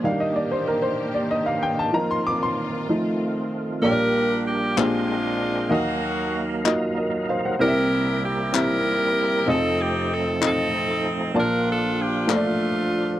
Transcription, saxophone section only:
\new Staff \with { instrumentName = "Saxophone section" } { \time 6/8 \key bes \major \tempo 4. = 64 << { r2. | r2. | bes'4 g'8 f'4. | ges'4 r2 |
bes'4 g'8 bes'4. | a'8 g'8 a'8 a'4 r8 | bes'8 a'8 g'8 f'4. | } \\ { r2. | r2. | <d' g'>4. <aes d'>4. | bes4. r4. |
<e' g'>4. <e' g'>4. | <c' ees'>4. <c' ees'>4. | <d' f'>4. <a d'>4. | } >> }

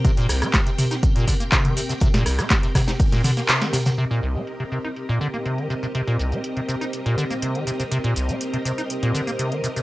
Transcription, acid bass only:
\new Staff \with { instrumentName = "Acid bass" } { \clef bass \time 4/4 \key c \minor \tempo 4 = 122 c16 bes,16 c,16 c'16 r16 c16 c16 ees'16 r16 bes,16 d16 bes16 c16 ees16 c16 c16 | c16 bes,16 c,16 c'16 r16 c16 c16 ees'16 r16 bes,16 d16 bes16 c16 ees16 c16 c16 | c16 bes,16 c,16 c'16 r16 c16 c16 ees'16 r16 bes,16 d16 bes16 c16 ees16 c16 c16 | c16 bes,16 c,16 c'16 r16 c16 c16 ees'16 r16 bes,16 d16 bes16 c16 ees16 c16 c16 |
c16 bes,16 c,16 c'16 r16 c16 c16 ees'16 r16 bes,16 d16 bes16 c16 ees16 c16 c16 | }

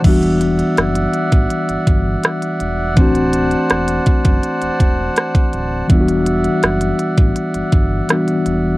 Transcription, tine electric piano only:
\new Staff \with { instrumentName = "Tine electric piano" } { \time 4/4 \key e \minor \tempo 4 = 82 <e g b d' fis'>1 | <e a c' d' fis'>1 | <e g b d' f' fis'>2. <e g b d' fis'>4 | }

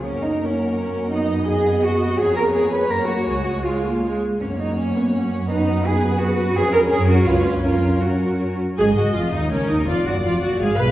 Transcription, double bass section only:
\new Staff \with { instrumentName = "Double bass section" } { \clef bass \time 3/4 \key fis \major \tempo 4 = 165 fis,2.~ | fis,2. | eis,2 fis,4 | cis,2~ cis,8 r8 |
fis,2.~ | fis,2. | eis,4 fis,4 cis,4 | fis,2~ fis,8 r8 |
\key ees \minor aes,,8 ges,,8 f,,8 ees,8 des,8 ees,8 | f,,8 ges,,8 f,,8 ges,,8 aes,,8 ces,8 | }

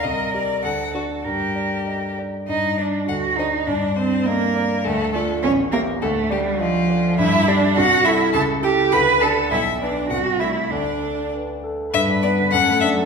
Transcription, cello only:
\new Staff \with { instrumentName = "Cello" } { \time 2/4 \key g \minor \tempo 4 = 102 bes'4 a'4 | bes'4. r8 | ees'8 d'8 fis'8 ees'8 | d'8 c'8 bes4 |
a8 a8 cis'8 bes8 | a8 g8 f4 | \key g \major e'8 d'8 fis'8 e'8 | a'8 g'8 b'8 a'8 |
e'8 d'8 fis'8 e'8 | d'4 r4 | b'4 a'4 | }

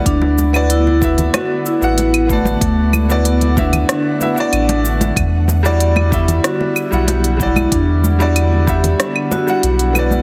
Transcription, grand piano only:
\new Staff \with { instrumentName = "Grand piano" } { \time 4/4 \key e \minor \tempo 4 = 94 <b e' fis' d''>8. <b e' fis' d''>8. <b e' fis' e''>4 r16 <b e' fis' fis''>8. <b e' fis' d''>8~ | <b e' fis' d''>8. <b e' fis' d''>8. <b e' fis' e''>4 <b e' fis' e''>16 <b e' fis' d''>4~ <b e' fis' d''>16 | r8. <g e' fis' d''>8. <g e' fis' e''>4 r16 <g e' fis' fis''>8. <g e' fis' d''>8~ | <g e' fis' d''>8. <g e' fis' d''>8. <g e' e'' fis''>4 r16 <g e' fis' fis''>8. <b e' fis' d''>8 | }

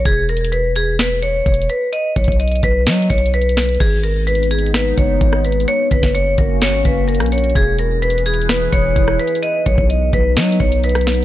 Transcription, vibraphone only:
\new Staff \with { instrumentName = "Vibraphone" } { \time 4/4 \key gis \minor \tempo 4 = 128 gis'8 ais'8 b'8 gis'8 b'8 cis''4 b'8 | dis''8 cis''8 dis''8 b'8 dis''8 cis''8 b'4 | gis'8 ais'8 b'8 gis'8 b'8 cis''4 b'8 | cis''8 b'8 cis''8 ais'8 cis''8 b'8 ais'8 cis''8 |
gis'8 ais'8 b'8 gis'8 b'8 cis''4 b'8 | dis''8 cis''8 dis''8 b'8 dis''8 cis''8 b'4 | }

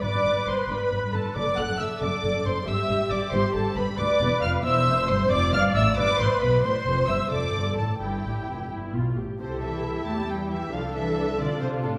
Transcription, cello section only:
\new Staff \with { instrumentName = "Cello section" } { \clef bass \time 6/8 \key g \major \tempo 4. = 91 g,16 g,16 g,16 g,16 g,16 r16 g,16 r16 g,16 g,16 g,16 g,16 | fis,16 fis,16 fis,16 fis,16 fis,16 r16 fis,16 r16 fis,16 fis,16 fis,16 fis,16 | g,16 g,16 g,16 g,16 g,16 r16 g,16 r16 g,16 g,16 g,16 g,16 | \key c \major d,8 e,8 f,8 e,8 f,8 g,8 |
f,8 g,8 a,8 g,8 a,8 b,8 | a,8 f,8 g,8 f,8 g,8 a,8 | g,8 a,8 f,8 g,8 b,8 a,8 | c8 e4 a8 g8 e8 |
f8 e4 d8 c8 a,8 | }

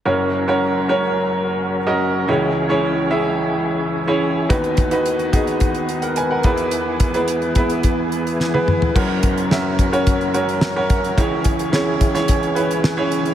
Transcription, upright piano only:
<<
  \new Staff \with { instrumentName = "Upright piano" } { \time 4/4 \key fis \mixolydian \tempo 4 = 108 << { r1 | r1 | r2 r8. <ais' fis''>16 <b' gis''>16 <ais' fis''>8 r16 | r1 |
r1 | r1 | } \\ { <cis' fis' ais' cis''>8. <cis' fis' ais' cis''>8. <cis' fis' ais' cis''>4. r16 <cis' fis' ais' dis''>8. | <cis' e' gis' cis''>8. <cis' e' gis' cis''>8. <cis' e' gis' e''>4. r16 <cis' e' gis' cis''>8. | <b dis' fis' b'>8. <b dis' fis' b'>8. <b dis' fis' gis'>4. r8 <b e' gis' b'>8~ | <b e' gis' b'>8. <b e' gis' b'>8. <b e' gis' b'>4. r16 <b e' gis' b'>8. |
<cis' fis' ais' cis''>4 <cis' fis' ais' e''>8. <cis' fis' ais' cis''>8. <cis' fis' ais' cis''>8. <cis' fis' ais' cis''>8. | <cis' e' gis' cis''>4 <cis' e' gis' cis''>8. <cis' e' gis' cis''>8. <cis' e' gis' b'>8. <cis' e' gis' cis''>8. | } >> }
  \new Staff \with { instrumentName = "Upright piano" } { \clef bass \time 4/4 \key fis \mixolydian <fis,, fis,>1 | <cis, cis>1 | <dis, dis>2.~ <dis, dis>8 <e, e>8~ | <e, e>2.~ <e, e>8 r8 |
<fis,, fis,>1 | <cis, cis>1 | }
>>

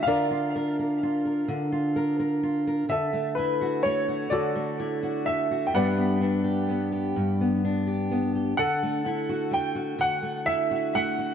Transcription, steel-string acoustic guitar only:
\new Staff \with { instrumentName = "Steel-string acoustic guitar" } { \time 6/8 \key d \major \tempo 4. = 42 << { <d' f' bes'>16 f'16 bes'16 bes'16 f'16 bes'8 f'16 bes'16 bes'16 f'16 bes'16 | r16 a16 e'16 fis'16 a16 fis'8 a16 e'16 fis'16 a16 fis'16 | <g b d' g'>16 b16 d'16 g'16 b16 g'8 b16 d'16 g'16 b16 g'16 | r16 a16 e'16 fis'16 a16 fis'8 a16 e'16 fis'16 a16 fis'16 | } \\ { d4. d4. | d4. d4. | g,4. g,4. | d4. d4. | } >> }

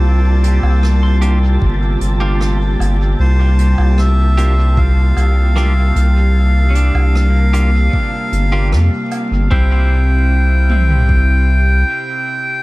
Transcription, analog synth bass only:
\new Staff \with { instrumentName = "Analog synth bass" } { \clef bass \time 4/4 \key c \mixolydian \tempo 4 = 76 c,8. c,4~ c,16 g,,8 g,,4 g,,8 | c,8. c,4.~ c,16 c,4 c,8~ | c,8. c,4~ c,16 r8 g,,8 f,16 r8 g,,16 | c,2. r4 | }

